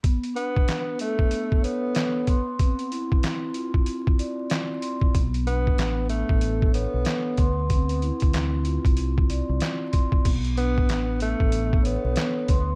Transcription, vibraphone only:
X:1
M:4/4
L:1/8
Q:"Swing 16ths" 1/4=94
K:D
V:1 name="Vibraphone"
B, D B, A B, c B, =c' | =C E C =F C d C =c' | B, D B, A B, c B, =c' | =C E C =F C d C =c' |
B, D B, A B, c B, =c' |]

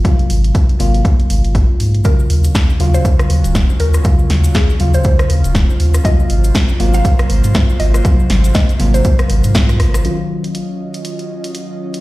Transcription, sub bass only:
X:1
M:4/4
L:1/16
Q:"Swing 16ths" 1/4=120
K:Ebdor
V:1 name="Sub bass" clef=bass
z2 A,,,2 z2 A,,,2 z2 A,,, A,,,2 z A,,2 | z2 E,,2 z2 E,,2 z2 E,, E,,,2 z E,,2 | z2 E,,2 z2 E,,2 z2 E,, E,,,2 z E,,2 | z2 A,,,2 z2 A,,,2 z2 A,,, A,,2 z A,,,2 |
z2 A,,,2 z2 A,,,2 z2 A,,, A,,3 A,,,2 | z16 |]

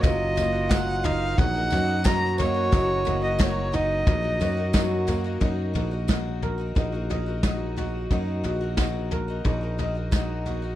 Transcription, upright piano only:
X:1
M:4/4
L:1/8
Q:1/4=89
K:Ebdor
V:1 name="Upright piano"
G, B, G, E G, G G, B, | G, B, G, E G, G G, B, | E G2 B E e E G | E G2 B E e E G |]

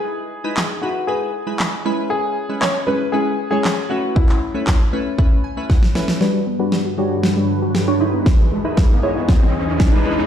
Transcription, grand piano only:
X:1
M:4/4
L:1/16
Q:1/4=117
K:E
V:1 name="Grand piano"
G6 F2 G6 z2 | G4 c2 B2 G3 G3 F2 | E12 z4 | z16 |
z16 |]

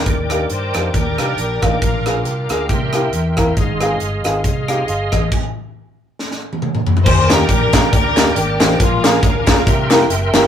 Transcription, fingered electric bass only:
X:1
M:4/4
L:1/8
Q:"Swing" 1/4=137
K:Eb
V:1 name="Fingered electric bass" clef=bass
E,,2 G,, F,, E,, C,, B,,, =A,,, | B,,,2 C,, D,, C,,2 =E,,2 | A,,,2 G,,, A,,, C,,2 G,,, =A,,, | z8 |
E,,2 B,,,2 D,,2 A,,, =A,,, | B,,,2 D,,2 C,,2 _G,,, =G,,, |]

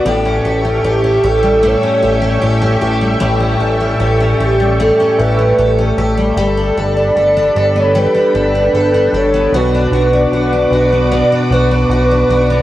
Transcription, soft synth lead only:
X:1
M:4/4
L:1/16
Q:1/4=76
K:Amix
V:1 name="Soft synth lead"
z4 G2 A2 c6 z2 | z6 G2 A2 B4 z2 | z2 d4- d c B4 B2 c2 | B4 B4 d2 B2 B4 |]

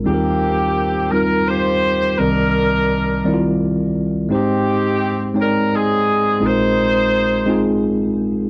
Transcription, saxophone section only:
X:1
M:6/8
L:1/8
Q:3/8=57
K:Eb
V:1 name="Saxophone section"
[B,CG]3 B [FGc]2 | [DEB]4 z2 | [CEG]3 B [CEA]2 | [EAc]4 z2 |]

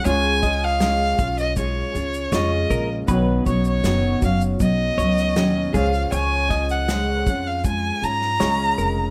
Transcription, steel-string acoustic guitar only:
X:1
M:4/4
L:1/8
Q:1/4=79
K:C#mix
V:1 name="Steel-string acoustic guitar"
[C,G,CEG] [CEG] [C,G,CEG] [CEG] [G,CEG] [CEG] [C,G,CEG]2 | [B,,D,F,B,CF] [F,B,CF] [B,,D,F,B,CF] [F,B,CF] [F,B,CF] [F,B,CF] [B,,D,F,B,CF] [C,G,CEG]- | [C,G,CEG] [CEG] [C,G,CG] [CEG] [G,CEG] [CEG] [C,G,CEG]2 |]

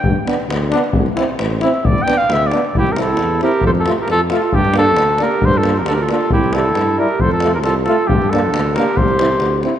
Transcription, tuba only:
X:1
M:2/4
L:1/8
Q:1/4=135
K:Gmix
V:1 name="Tuba" clef=bass
G,, z D,,2 | C,, z A,,,2 | G,,, z D,,2 | [K:Cmix] C,,2 E,,2 |
F,,2 F,,2 | G,,2 D,,2 | G,,2 D,,2 | C,,2 G,,2 |
F,,2 C,,2 | G,,2 D,,2 | C,,2 D,,2 |]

